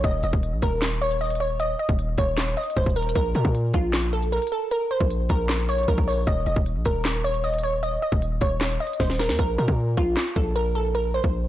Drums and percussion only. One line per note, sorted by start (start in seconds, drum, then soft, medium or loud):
0.04 kick loud
0.04 closed hi-hat medium
0.23 closed hi-hat medium
0.33 kick loud
0.43 closed hi-hat medium
0.62 kick medium
0.62 closed hi-hat medium
0.82 snare loud
0.82 clap medium
0.82 closed hi-hat medium
1.01 closed hi-hat medium
1.11 closed hi-hat soft
1.21 closed hi-hat soft
1.26 closed hi-hat medium
1.30 closed hi-hat medium
1.35 closed hi-hat medium
1.60 closed hi-hat medium
1.89 kick loud
1.99 closed hi-hat medium
2.18 kick medium
2.18 closed hi-hat medium
2.38 snare loud
2.38 clap loud
2.38 closed hi-hat medium
2.57 closed hi-hat soft
2.64 closed hi-hat medium
2.70 closed hi-hat medium
2.77 kick medium
2.77 closed hi-hat soft
2.83 kick loud
2.83 closed hi-hat medium
2.90 closed hi-hat medium
2.96 closed hi-hat medium
2.96 open hi-hat medium
3.03 closed hi-hat medium
3.09 closed hi-hat medium
3.15 kick loud
3.15 closed hi-hat medium
3.35 closed hi-hat medium
3.45 kick loud
3.55 closed hi-hat medium
3.74 kick loud
3.74 closed hi-hat medium
3.93 snare loud
3.93 clap medium
3.93 closed hi-hat medium
4.13 closed hi-hat medium
4.23 closed hi-hat soft
4.32 closed hi-hat soft
4.37 closed hi-hat medium
4.42 closed hi-hat medium
4.47 closed hi-hat medium
4.71 closed hi-hat medium
5.01 kick loud
5.11 closed hi-hat medium
5.29 kick medium
5.29 closed hi-hat medium
5.49 snare loud
5.49 clap loud
5.49 closed hi-hat medium
5.69 closed hi-hat medium
5.74 closed hi-hat medium
5.78 closed hi-hat medium
5.83 closed hi-hat medium
5.88 kick medium
5.88 closed hi-hat medium
5.98 kick loud
5.98 closed hi-hat soft
6.08 open hi-hat medium
6.27 kick loud
6.27 closed hi-hat medium
6.46 closed hi-hat medium
6.56 kick loud
6.66 closed hi-hat medium
6.85 kick medium
6.85 closed hi-hat medium
7.05 snare loud
7.05 clap medium
7.05 closed hi-hat medium
7.24 closed hi-hat medium
7.34 closed hi-hat soft
7.44 closed hi-hat soft
7.49 closed hi-hat medium
7.54 closed hi-hat medium
7.59 closed hi-hat medium
7.83 closed hi-hat medium
8.12 kick loud
8.22 closed hi-hat medium
8.41 kick medium
8.41 closed hi-hat medium
8.61 snare loud
8.61 clap loud
8.61 closed hi-hat medium
8.80 closed hi-hat soft
8.87 closed hi-hat medium
8.93 closed hi-hat medium
9.00 kick medium
9.00 snare medium
9.00 closed hi-hat soft
9.06 snare medium
9.06 closed hi-hat soft
9.13 closed hi-hat medium
9.19 snare loud
9.19 closed hi-hat medium
9.19 open hi-hat medium
9.26 snare loud
9.26 closed hi-hat medium
9.32 closed hi-hat medium
9.39 kick loud
9.68 kick loud
9.97 kick medium
10.17 snare loud
10.17 clap medium
10.36 kick medium
11.24 kick loud